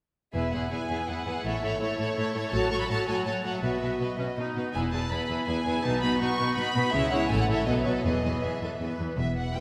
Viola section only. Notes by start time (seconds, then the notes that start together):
0.33 B3 E4
0.52 B3 E4
0.71 B3 E4
0.89 B3 E4
1.07 B3 E4
1.26 B3 E4
1.44 A3 E4
1.62 A3 E4
1.80 A3 E4
1.98 A3 E4
2.16 A3 E4
2.35 A3 E4
2.53 F#3 F#4
2.72 F#3 F#4
2.89 F#3 F#4
3.07 F#3 F#4
3.27 F#3 F#4
3.44 F#3 F#4
3.63 B3 F#4
3.82 B3 F#4
4.01 B3
4.19 C#4
4.38 D#4
4.74 B3 E4
4.93 B3 E4
5.12 B3 E4
5.29 B3 E4
5.48 B3 E4
5.66 B3 E4
5.84 B3 D#4
6.03 B3 D#4
6.21 B3 D#4
6.39 B3 D#4
6.57 B3 D#4
6.75 B3 D#4
6.93 G#3 E4
7.12 G#3 E4
7.30 A3 E4
7.49 A3 E4
7.67 F#3 B3
7.87 F#3 B3
8.05 E3 B3
8.24 E3 B3
8.44 E3 B3
8.62 E3 B3
8.81 E3 B3
8.99 E3 B3
9.55 G3 E4